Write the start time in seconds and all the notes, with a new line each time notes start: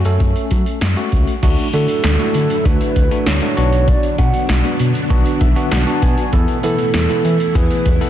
0.05 F#2 A3 C#4 A4, closed hi-hat
0.20 F#2, kick, closed hi-hat
0.36 closed hi-hat
0.51 F#3, kick, closed hi-hat
0.66 closed hi-hat
0.81 F#2, snare, closed hi-hat
0.97 A3 C#4 F#4, closed hi-hat
1.12 C#2, kick, closed hi-hat
1.27 closed hi-hat
1.43 D2 D3 F#3 A3 D4 E4 F#4, kick, closed hi-hat, crash
1.58 closed hi-hat
1.73 D3 A3 D4 F#4 A4, closed hi-hat
1.88 closed hi-hat
2.04 D2, snare, closed hi-hat
2.19 A3 D4 F#4, closed hi-hat
2.34 D3, closed hi-hat
2.50 closed hi-hat
2.65 D2 A3 D4 F#4 B4, kick, closed hi-hat
2.81 closed hi-hat
2.96 D2, kick, closed hi-hat
3.11 A3 D4 F#4, closed hi-hat
3.26 D2 C#5, snare, closed hi-hat
3.42 A3 D4 F#4, closed hi-hat
3.57 B1 D3 F#3 B3 D4 F#4, closed hi-hat
3.73 closed hi-hat
3.88 D5, kick, closed hi-hat
4.03 closed hi-hat
4.18 B2 B3 D4 F#4 F#5, kick, closed hi-hat
4.34 closed hi-hat
4.49 B1, snare, closed hi-hat
4.64 B3 D4 F#4, closed hi-hat
4.80 B2, closed hi-hat
4.95 closed hi-hat
5.10 B1 B3 D4 F#4, kick, closed hi-hat
5.26 closed hi-hat
5.41 B1 E5, kick, closed hi-hat
5.56 B3 D4 F#4, closed hi-hat
5.71 B1 F#5, snare, closed hi-hat
5.87 B3 D4 F#4 A5, closed hi-hat
6.02 B2 G#5, kick, closed hi-hat
6.18 closed hi-hat
6.33 E2 B2 E3 A3 B3 E4 A4, kick, closed hi-hat
6.48 closed hi-hat
6.63 E3 B3 E4 A4, closed hi-hat
6.78 closed hi-hat
6.94 E2, snare, closed hi-hat
7.09 B3 E4 A4, closed hi-hat
7.25 E3, closed hi-hat
7.40 closed hi-hat
7.55 E2 B3 E4 G#4 B4, kick, closed hi-hat
7.71 closed hi-hat
7.86 E2, kick, closed hi-hat
8.01 B3 E4 A4, closed hi-hat